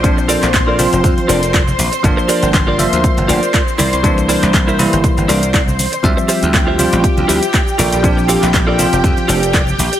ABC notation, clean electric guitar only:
X:1
M:4/4
L:1/16
Q:"Swing 16ths" 1/4=120
K:Bblyd
V:1 name="Clean electric guitar"
z2 [FABd]2 z [FABd] z4 [FABd]2 z4 | z2 [FGBd]2 z [FGBd] z4 [FGBd]2 z2 [EBcd]2 | z2 [EBcd]2 z [EBce] z4 [EBcd]2 z4 | z2 [FGce]2 z [FGce] z4 [FGce]2 z2 [FABd]2 |
z2 [FABf]2 z [FABd] z4 [FABd]2 z4 |]